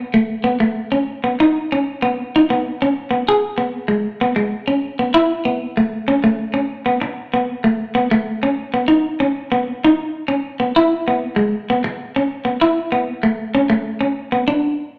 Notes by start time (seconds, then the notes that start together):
0.14 A3
0.44 B3
0.60 A3
0.92 C#4
1.24 B3
1.40 D#4
1.72 C#4
2.02 B3
2.36 D#4
2.50 B3
2.82 C#4
3.11 B3
3.29 G#4
3.58 B3
3.88 G#3
4.21 B3
4.36 G#3
4.68 C#4
4.99 B3
5.14 E4
5.45 B3
5.77 A3
6.08 C#4
6.24 A3
6.54 C#4
6.86 B3
7.01 muted clean electric guitar stroke
7.34 B3
7.64 A3
7.95 B3
8.11 A3
8.43 C#4
8.74 B3
8.88 D#4
9.20 C#4
9.52 B3
9.84 D#4
10.28 C#4
10.60 B3
10.76 E4
11.08 B3
11.36 G#3
11.70 B3
11.84 muted clean electric guitar stroke
12.16 C#4
12.45 B3
12.61 E4
12.92 B3
13.23 A3
13.55 C#4
13.70 A3
14.01 C#4
14.32 B3
14.48 D4